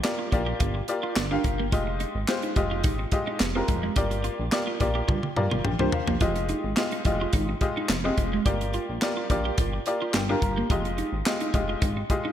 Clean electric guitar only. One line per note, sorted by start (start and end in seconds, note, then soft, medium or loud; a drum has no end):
0.19 0.29 F4 medium
0.32 muted clean electric guitar stroke soft
0.46 0.57 G4 medium
0.60 0.72 F4 medium
0.75 muted clean electric guitar stroke soft
1.03 1.13 F4 medium
1.31 1.41 D4 medium
1.45 muted clean electric guitar stroke soft
1.59 1.70 A#3 medium
1.73 1.84 F4 medium
1.87 muted clean electric guitar stroke soft
2.00 2.12 D#4 medium
2.43 2.54 D#4 medium
2.57 muted clean electric guitar stroke soft
2.71 2.82 F4 medium
2.84 2.96 D#4 medium
2.99 muted clean electric guitar stroke medium
3.27 3.38 D#4 medium
3.55 3.66 C4 medium
3.69 muted clean electric guitar stroke soft
3.83 3.94 G#3 medium
3.96 4.08 G4 medium
4.11 muted clean electric guitar stroke soft
4.24 4.36 F4 medium
4.67 4.78 F4 medium
4.80 muted clean electric guitar stroke soft
4.95 5.06 G4 medium
5.08 5.20 F4 medium
5.23 muted clean electric guitar stroke soft
5.51 5.62 F4 medium
5.79 5.90 D4 medium
5.93 muted clean electric guitar stroke soft
6.08 6.18 A#3 medium
6.21 6.32 F4 medium
6.36 muted clean electric guitar stroke soft
6.49 6.61 D#4 medium
6.92 7.02 D#4 medium
7.06 muted clean electric guitar stroke soft
7.21 7.31 F4 medium
7.34 7.45 D#4 medium
7.49 muted clean electric guitar stroke medium
7.77 7.87 D#4 medium
8.05 8.15 C4 medium
8.18 muted clean electric guitar stroke soft
8.33 8.43 G#3 medium
8.46 8.58 G4 medium
8.62 muted clean electric guitar stroke soft
8.74 8.85 F4 medium
9.17 9.27 F4 medium
9.30 muted clean electric guitar stroke soft
9.45 9.55 G4 medium
9.58 9.69 F4 medium
9.73 muted clean electric guitar stroke soft
10.02 10.11 F4 medium
10.29 10.39 D4 medium
10.43 muted clean electric guitar stroke soft
10.57 10.67 A#3 medium
10.71 10.82 F4 medium
10.86 muted clean electric guitar stroke soft
10.98 11.10 D#4 medium
11.41 11.51 D#4 medium
11.54 muted clean electric guitar stroke soft
11.69 11.79 F4 medium
11.82 11.93 D#4 medium
11.97 muted clean electric guitar stroke soft
12.25 12.32 D#4 medium